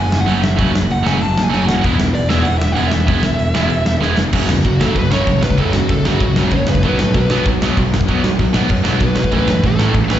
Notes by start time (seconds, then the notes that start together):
Already playing: F#1
0.00 G#5
0.12 F#1, snare
0.21 F#5
0.26 F#1 F#2 C#3 F#3 A3 C#4 F#4, open hi-hat
0.42 F#1 E5, snare
0.56 F#1 F#2 C#3 F#3 A3 C#4 F#4, kick, open hi-hat
0.74 F#1, snare
0.90 F#1 F#5, open hi-hat
1.03 F#1 F#2 C#3 F#3 A3 C#4 F#4 G#5, snare
1.08 F#3
1.21 F#1 A5, open hi-hat
1.38 F#1, snare
1.43 G#5
1.50 F#1 F#2 C#3 F#3 A3 C#4 F#4
1.54 open hi-hat
1.67 F#1 F#5, snare
1.81 E1 E2 B2 E3 G#3 B3 E4, kick, open hi-hat
1.99 E1, snare
2.15 E1 D5, open hi-hat
2.29 E1 E2 B2 E3 G#3 B3 E4 E5, snare
2.43 E1 F#5, open hi-hat
2.58 E1 E5, snare
2.72 E3 F#5
2.76 E1 E2 B2 G#3 B3 E4, open hi-hat
2.88 E1 E5, snare
3.07 E1 E2 B2 E3 G#3 B3 E4, kick, open hi-hat
3.23 E1, snare
3.38 E1, open hi-hat
3.54 E1 E2 B2 E3 G#3 B3 E4, snare
3.70 E1, open hi-hat
3.85 E1, snare
4.00 E1 E2 B2 E3 G#3 B3 E4, snare
4.16 F1, snare
4.33 F#1 F#2 C#3 F#3, kick, crash
4.47 E2 F#2 C#3, snare
4.65 F#1 F#2 C#3 F#4, kick, crash
4.80 F#2 C#3 F#3 A4, snare
4.95 F#1 F#2 C#3 B4, kick, crash
5.11 F#1 F#2 C#3 F#3 C#5, snare
5.27 F#1 F#2 C#3, kick, crash
5.41 C#2 F#2 C#3 B4, snare
5.50 kick
5.57 F#1 F#2 C#3 F#3 A4, kick, crash
5.73 F#2 C#3 F#4, snare
5.89 F#1 F#2 C#3 A4, kick, crash
6.04 F#1 F#2 C#3 F#3 F#4, snare
6.20 C#2 F#2 C#3, kick, crash
6.36 F#1 F#2 C#3 F#3, snare
6.51 F#1 F#2 C#3 C#5, kick, crash
6.67 F#1 F#2 C#3 B4, snare
6.75 kick
6.82 B1 B2 F#3 B3 B4, kick, crash
6.99 A2 B2 F#3 B4, snare
7.14 B1 B2 F#3 B4, kick, crash
7.30 B2 F#3 B3, snare
7.46 B1 B2 F#3, kick, crash
7.61 B1 B2 F#3 B3, snare
7.77 B1 B2 F#3, kick, crash
7.92 F#1 B2 F#3, snare
8.01 kick
8.08 B1 B2 F#3 B3, kick, crash
8.23 B2 F#3, snare
8.39 B1 B2 F#3, kick, crash
8.53 B1 B2 F#3 B3, snare
8.68 F#2 B2 F#3, kick, crash
8.83 B1 B2 F#3 B3, snare
9.00 B1 B2 F#3 B4, kick, crash
9.15 B1 B2 F#3 B4, snare
9.24 kick
9.31 A1 A2 E3 A3 B4, kick, crash
9.47 F#2 A2 E3 B4, snare
9.64 A1 A2 E3 A4, kick, crash
9.79 A2 E3 A3, snare
9.94 A1 A2 E3, kick, crash
10.08 A1 A2 E3 A3 B4, snare